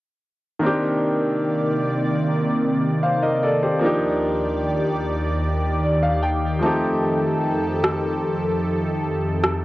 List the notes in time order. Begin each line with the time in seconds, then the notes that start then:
0.59 C3 D#3 A#3 C4 D5
0.65 D4 G4
3.03 C5 F5
3.23 A#4 D#5
3.43 A4 D5
3.63 G4 C5
3.79 D#2 D#3 F3 A#3 D4 G4 D5
3.85 D#4 G4
5.83 D5
6.03 F5
6.23 G5
6.59 F2 F3 A3 C4 A4 A5
6.64 D#4 G4
7.84 cross-stick
9.44 cross-stick